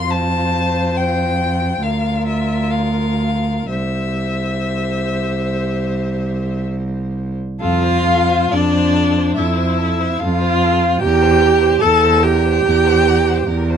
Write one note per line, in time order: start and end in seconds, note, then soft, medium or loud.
0.00 1.78 F2 medium
0.00 1.78 F4 medium
0.00 0.13 C6 medium
0.09 1.77 C5 medium
0.09 0.98 A5 loud
0.97 1.84 G5 medium
1.80 3.67 D2 medium
1.80 3.66 F4 medium
1.80 3.67 A#4 medium
1.80 2.26 F5 medium
2.27 2.72 E5 medium
2.71 3.69 F5 medium
3.69 7.36 C2 medium
3.69 7.35 G4 medium
3.69 7.35 C5 medium
3.69 6.62 E5 medium
7.60 8.41 F2 medium
7.60 8.55 F4 medium
7.60 7.84 A4 medium
7.60 8.53 F5 loud
7.83 8.07 C5 medium
8.05 8.29 A4 medium
8.28 8.50 C5 medium
8.51 9.27 F2 medium
8.51 9.39 D4 loud
8.51 8.74 A4 medium
8.51 9.35 D5 medium
8.72 8.96 C5 medium
8.95 9.19 A4 medium
9.17 9.37 C5 medium
9.36 10.10 F2 medium
9.36 10.22 E4 medium
9.36 9.58 A4 medium
9.36 10.21 E5 medium
9.56 9.79 C5 medium
9.78 10.01 A4 medium
9.99 10.20 C5 medium
10.19 10.93 F2 medium
10.19 11.01 F4 loud
10.19 10.42 A4 medium
10.19 10.99 F5 medium
10.41 10.64 C5 medium
10.63 10.84 A4 medium
10.83 11.02 C5 medium
10.99 11.72 E2 medium
10.99 11.83 G4 loud
10.99 11.24 A#4 medium
10.99 11.78 G5 loud
11.22 11.43 C5 medium
11.42 11.64 A#4 medium
11.62 11.82 C5 medium
11.80 12.55 E2 medium
11.80 12.24 A4 loud
11.80 12.05 A#4 medium
11.80 12.24 A5 medium
12.03 12.27 C5 medium
12.22 13.77 G4 loud
12.22 12.48 A#4 medium
12.22 13.77 G5 loud
12.46 12.66 C5 medium
12.65 13.37 E2 medium
12.65 12.88 A#4 medium
12.86 13.08 C5 medium
13.07 13.31 A#4 medium
13.30 13.48 C5 medium
13.47 13.77 E2 medium
13.47 13.71 A#4 medium
13.70 13.77 C5 medium